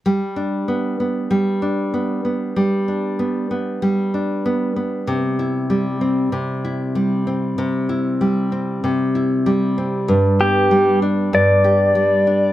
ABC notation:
X:1
M:4/4
L:1/8
Q:"Swing 16ths" 1/4=96
K:G
V:1 name="Electric slide guitar"
z8 | z8 | z8 | z8 |
z G2 z d4 |]
V:2 name="Nylon-string guitar"
G, D B, B, G, D B, B, | G, D B, B, G, D B, B, | C, E G, C C, E G, C | C, E G, C C, E G, C |
G,, B, G, D G,, G G, D |]